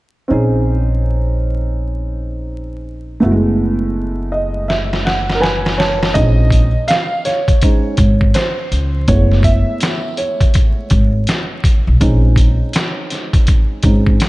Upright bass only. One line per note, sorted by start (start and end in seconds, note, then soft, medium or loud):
0.31 3.19 A#1 medium
3.23 6.11 F#1 medium
6.16 6.69 A#1 medium
7.98 8.31 G#1 medium
8.71 9.04 C#2 medium
9.08 9.61 F#1 medium
10.91 11.24 G#1 medium
11.87 12.00 B1 medium
12.01 12.54 A#1 medium
13.83 14.16 G#1 medium